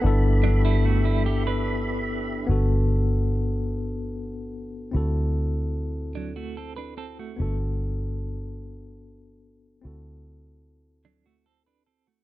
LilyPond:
<<
  \new Staff \with { instrumentName = "Tonewheel organ" } { \time 6/8 \key g \major \tempo 4. = 49 <g' e'' b''>2. | r2. | r2. | r2. |
r2. | }
  \new Staff \with { instrumentName = "Tine electric piano" } { \time 6/8 \key g \major <b d' e' a'>2. | <b d' fis' a'>2. | <c' e' fis' a'>2. | <b d' fis' a'>2. |
<c' e' fis' a'>2. | }
  \new Staff \with { instrumentName = "Clean electric guitar" } { \time 6/8 \key g \major r8 <fis d'>16 <g e'>16 <a fis'>16 <g e'>16 <b g'>16 <d' b'>4~ <d' b'>16 | r2. | r4. <fis d'>16 <a fis'>16 <c' a'>16 <d' b'>16 <c' a'>16 <a fis'>16~ | <a fis'>16 r2 r8. |
r4. <fis d'>16 <a fis'>16 <c' a'>16 <d' b'>16 <c' a'>16 <a fis'>16 | }
  \new Staff \with { instrumentName = "Fingered electric bass" } { \clef bass \time 6/8 \key g \major g,,2. | g,,2. | d,2. | g,,2. |
d,2. | }
>>